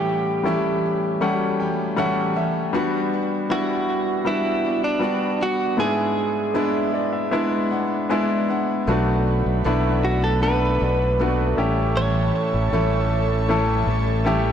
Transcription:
Already playing: A2 E3 G3 A3 C#4 E4 G4
0.43 A2 E3 G3 A3 C#4 E4
0.48 C#4 G4
1.21 E3 G3 A3 C#4 G4 F#5
1.35 F#4
1.60 G3 C#4 G4 G5
1.96 A2 E3 G3 A3 C#4 G4 E5 F#5
2.36 G3 C#4 G4 E5
2.73 G3 B3 D4 F#4
3.50 G3 B3 D4 E4 F#4
4.25 G3 B3 D4 E4 F#4
4.29 F#4
4.64 B3 D4 F#4
4.84 D4
4.99 G3 B3 D4 F#4
5.04 D4 F#4
5.40 B3 D4 F#4
5.77 G#2 G#3 B3 D4 E4 G#4
6.54 G#3 B3 D4 E4
6.94 D5
7.13 E5
7.31 G#3 B3 D4 E4 E5
7.71 B3 D4 E4 F#5
8.09 G#3 B3 D4 E4 G#5
8.48 B3 D4 E4 F#5
8.87 B1 B2 F#3 A3 B3 D4 F#4 A4 D5 F#5 B5
9.46 B1
9.64 B1 B2 F#3 A3 B3 D4 E4 F#4
10.05 F#4
10.24 A4
10.42 F#3 A3 B3 D4 F#4 A4 B4
10.81 B1 A3 D4 F#4
11.19 B2 F#3 A3 B3 D4 F#4
11.57 A1 G3 A3 C#4 E4 G4 E5 A5 C#6
11.96 A2 E3 G3 C#4 G4 C#5
12.54 A1
12.72 A1 A2 E3 G3 A3 C#4 E4 G4 A4
13.49 E3 G3 A3 C#4 E4 G4 A4
13.87 A1 G3 C#4 G4
14.25 A2 E3 G3 A3 C#4 E4 G4

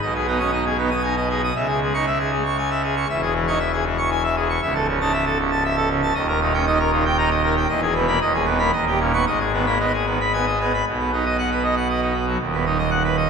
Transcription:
0.02 B1 B2 D#5
0.15 G#4
0.27 B3 D#4
0.39 C#4 D#6
0.52 D#4 D#5
0.66 G#4
0.78 B3 D#4
0.90 D#6
1.03 D#4 G#5
1.17 D#5
1.30 D#4 G#4
1.44 D#6
1.56 C#2 C#3 E5
1.68 G#4
1.81 G#3
1.94 D#4 C#6
2.07 E5
2.19 G#4
2.31 G#3
2.45 C#6
2.58 G#5
2.70 E5
2.83 G#4
2.96 C#6
3.09 E1 E2 E5
3.22 G#4
3.35 E3
3.47 D#4 C#6
3.60 E5
3.73 G#4
3.85 E3
3.98 C#6
4.11 G#5
4.24 E5
4.36 G#4
4.49 C#6
4.62 C#1 C#2 E5
4.75 A4
4.88 C#3
5.01 D#4 A5
5.13 E5
5.26 A4
5.39 C#3
5.52 A5
5.64 E5
5.77 A4
5.89 C#3
6.02 A5
6.15 D#1 D#2 D#5
6.28 A#4
6.41 A#2 D#4
6.54 C#4 G5
6.67 D#4 D#5
6.79 A#4
6.92 A#2 D#4
7.05 G5
7.18 D#4 A#5
7.30 D#5
7.43 D#4 A#4
7.56 G5
7.68 E1 E2 D#5
7.82 G#4
7.95 B2 B3
8.07 A#3 B5
8.21 D#1 D#2 D#5
8.33 G#4
8.45 D#3 B3
8.59 A#3 B5
8.73 D#1 D#2 D#5
8.87 G4
9.00 A#2 C#4
9.13 B3 C#6
9.27 G#1 G#2 D#5
9.40 G#4
9.52 D#3 B3
9.66 A#3 B5
9.80 B3 D#5
9.93 G#4
10.06 D#3 B3
10.21 B5
10.33 B3 G#5
10.46 D#5
10.60 B3 G#4
10.74 B5
10.87 B1 B2
10.99 B3
11.13 D#4
11.25 D#5
11.38 F#5
11.52 B4
11.64 D#5
11.76 F#5
11.89 D#5
12.01 D#4
12.14 B3
12.27 F#3
12.40 D#1 D#2
12.53 B3
12.66 D#4
12.78 D#5
12.90 F#5
13.04 B4
13.17 D#5

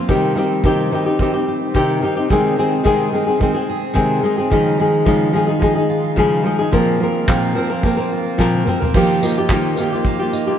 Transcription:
Already playing: C4 F4
0.08 C3 D#3 G3 C4 D#4 G4, kick
0.35 D#3 C4 D#4 G4
0.64 C3 D#3 C4 D#4 G4, kick
0.92 D#3 C4 D#4 G4
1.06 C4 D#4 G4
1.19 D#3 C4 D#4 G4, kick
1.34 C4 D#4 G4
1.48 G4
1.74 C3 D#3 C4 D#4 G4, kick
2.01 D#3 C4 D#4 G4
2.17 C4 D#4 G4
2.29 C3 D#3 G#3 C4 G#4, kick
2.56 D#3 G#3 C4 G#4
2.84 C3 D#3 G#3 C4 G#4, kick
3.12 D#3 G#3 C4 D#4 G#4
3.27 G#3 C4 G#4
3.39 D#3 G#3 C4 G#4, kick
3.54 G#3 C4 G#4
3.70 G#4
3.94 C3 D#3 G#3 C4 G#4, kick
4.22 D#3 G#3 C4 D#4 G#4
4.38 G#3 C4 G#4
4.50 C#3 D#3 F3 G#3 D#4 G#4, kick
4.78 F3 G#3 D#4 G#4
5.05 C#3 F3 G#3 D#4 F4 G#4, kick
5.33 F3 G#3 D#4 G#4
5.47 G#3 D#4 G#4
5.59 F3 G#3 D#4 G#4, kick
5.76 G#3 D#4 G#4
5.90 F4
6.16 C#3 F3 G#3 D#4 G#4, kick
6.43 F3 G#3 D#4 G#4
6.59 G#3 D#4 G#4
6.71 A#2 F3 A#3 C4 A#4, kick
7.00 F3 A#3 C4 A#4
7.28 A#2 F3 A#3 C4 F4 A#4, kick, clap
7.55 F3 A#3 C4 A#4
7.70 A#3 C4 A#4
7.83 F3 A#3 C4 A#4, kick
7.97 A#3 C4 A#4
8.12 F4
8.38 A#2 F3 A#3 C4 A#4, kick, snare
8.54 high tom
8.66 F3 A#3 C4 A#4, mid tom
8.81 A#3 C4 A#4, floor tom
8.94 D#3 F3 A#3 F4 G4, kick, crash
9.22 D#3 A#3 D#4 F4 G4, tambourine
9.38 A#3 F4 G4
9.49 D#3 A#3 F4 G4, kick, clap
9.77 D#3 A#3 F4 G4, tambourine
9.92 A#3 F4 G4
10.05 A#3, kick
10.19 A#3 F4 G4
10.33 D#4, tambourine
10.47 A#3 F4 G4

